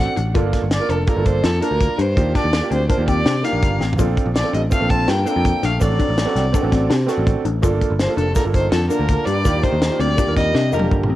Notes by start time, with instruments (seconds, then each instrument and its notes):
Already playing: grand piano C4 D4 F#4 A4, violin F#5
0.16 picked electric bass A1, synth arpeggio sound D4, closed hi-hat
0.34 picked electric bass G1, grand piano A#3 D4 F4 A4, synth arpeggio sound F4, kick, closed hi-hat
0.53 kick, snare, closed hi-hat
0.62 picked electric bass G1
0.71 violin D5, snare, closed hi-hat
0.80 grand piano A#3 D4 F4 A#4
0.89 picked electric bass F1, synth arpeggio sound D4, violin A4, closed hi-hat
1.07 grand piano A#3 D4 F4 A4, violin A#4, kick, closed hi-hat
1.16 picked electric bass G1, grand piano A#3 D4 F4 A4
1.25 violin C5, kick, closed hi-hat
1.44 picked electric bass F2, synth arpeggio sound F4, violin A4, snare, closed hi-hat
1.61 grand piano A#3 D4 F4 A#4, synth arpeggio sound D4, violin A#4, closed hi-hat
1.71 picked electric bass D2
1.81 kick, closed hi-hat
1.98 picked electric bass G2, synth arpeggio sound D4, violin C5, closed hi-hat
2.16 picked electric bass D#2, grand piano A#3 D4 F4 G4, kick, closed hi-hat
2.35 synth arpeggio sound D4, violin D5, kick, snare, closed hi-hat
2.44 picked electric bass D#2
2.53 snare, closed hi-hat
2.61 grand piano A#3 D4 F4 G4
2.71 picked electric bass D2, synth arpeggio sound C4, violin C5, closed hi-hat
2.88 grand piano A#3 D4 F4 A#4, synth arpeggio sound D4, violin C5, kick, closed hi-hat
2.98 picked electric bass D#2, grand piano A#3 D4 F4 G4
3.08 synth arpeggio sound C4, violin D5, kick, closed hi-hat
3.26 picked electric bass C3, synth arpeggio sound D4, snare, closed hi-hat
3.43 grand piano A#3 D4 F4 G4, trombone A#3, synth arpeggio sound D#4, violin F5, snare, closed hi-hat
3.53 picked electric bass A#1
3.63 picked electric bass G1, kick, closed hi-hat
3.80 picked electric bass A1, synth arpeggio sound C4, snare
3.93 floor tom
3.98 picked electric bass A#1, grand piano C4 D4 F4 A4, synth arpeggio sound F4, kick, closed hi-hat, shaker
4.17 kick, closed hi-hat
4.26 picked electric bass A#1
4.35 trombone F3, violin D5, snare, closed hi-hat, shaker
4.43 grand piano C4 D4 F4 A4
4.53 picked electric bass A1, trombone G3, synth arpeggio sound D4, violin D#5, closed hi-hat
4.70 trombone A3, grand piano C4 D4 F4 A4, violin F5, kick, closed hi-hat, shaker
4.80 picked electric bass A#1, grand piano C4 D4 F4 A4
4.90 trombone C4, violin A5, kick, closed hi-hat
5.08 picked electric bass G2, trombone A#3, synth arpeggio sound F4, violin G5, snare, closed hi-hat
5.26 trombone A#3, grand piano C4 D4 F4 A4, synth arpeggio sound D4, violin G5, closed hi-hat, shaker
5.36 picked electric bass F2
5.45 kick, closed hi-hat
5.63 picked electric bass A#1, trombone A3, synth arpeggio sound D4, violin F5, snare, closed hi-hat
5.80 picked electric bass A1, trombone F#3, grand piano C4 D4 F#4 A4, violin D5, kick, closed hi-hat, shaker
5.99 synth arpeggio sound D4, kick, closed hi-hat
6.09 picked electric bass A1
6.18 snare, closed hi-hat, shaker
6.25 grand piano C4 D4 F#4 A4
6.36 picked electric bass C2, synth arpeggio sound C4, snare, closed hi-hat
6.53 grand piano C4 D4 F#4 A4, synth arpeggio sound D4, kick, closed hi-hat, shaker
6.62 picked electric bass A1, grand piano C4 D4 F#4 A4
6.72 synth arpeggio sound C4, kick, snare, closed hi-hat
6.90 picked electric bass C3, synth arpeggio sound D4, snare, closed hi-hat
7.07 grand piano C4 D4 F#4 A4, synth arpeggio sound F#4, snare, closed hi-hat, shaker
7.18 picked electric bass A1
7.27 kick, closed hi-hat
7.45 picked electric bass A1, synth arpeggio sound D4, closed hi-hat
7.62 picked electric bass G1, grand piano A#3 D4 F4 A4, synth arpeggio sound F4, kick, closed hi-hat, shaker
7.81 kick, closed hi-hat
7.90 picked electric bass G1
7.99 trombone F3, violin C5, snare, closed hi-hat, shaker
8.07 grand piano A#3 D4 F4 A4
8.17 picked electric bass F1, trombone C3, synth arpeggio sound D4, violin A4, closed hi-hat
8.34 trombone D3, grand piano A#3 D4 F4 A4, violin A#4, kick, snare, closed hi-hat, shaker
8.43 picked electric bass G1, grand piano A#3 D4 F4 A4
8.54 trombone D#3, violin C5, kick, closed hi-hat
8.72 picked electric bass F2, trombone D3, synth arpeggio sound F4, violin A4, snare, closed hi-hat
8.89 trombone D3, grand piano A#3 D4 F4 A#4, synth arpeggio sound D4, violin A#4, closed hi-hat, shaker
8.99 picked electric bass D2
9.09 kick, closed hi-hat
9.25 picked electric bass G2, trombone G3, synth arpeggio sound D4, violin D5, closed hi-hat
9.45 picked electric bass D#2, grand piano A#3 D4 F4 G4, kick, closed hi-hat, shaker
9.63 trombone D#3, synth arpeggio sound D4, violin C5, kick, closed hi-hat
9.73 picked electric bass D#2
9.82 snare, closed hi-hat
9.90 grand piano A#3 D4 F4 G4
10.00 picked electric bass D2, trombone G3, synth arpeggio sound C4, violin D5, closed hi-hat
10.17 grand piano A#3 D4 F4 G4, synth arpeggio sound D4, kick, closed hi-hat, shaker
10.26 picked electric bass D#2, grand piano A#3 D4 F4 A#4
10.36 trombone G3, synth arpeggio sound C4, violin D#5, kick, snare, closed hi-hat
10.54 picked electric bass C3, synth arpeggio sound D4, snare
10.72 picked electric bass F1, grand piano D3 A#3 F4 G4, trombone D3, violin A#4, synth arpeggio sound D#5, shaker
10.79 high tom
10.91 picked electric bass G1, kick, mid tom, shaker
11.03 mid tom
11.09 picked electric bass A1, synth arpeggio sound C4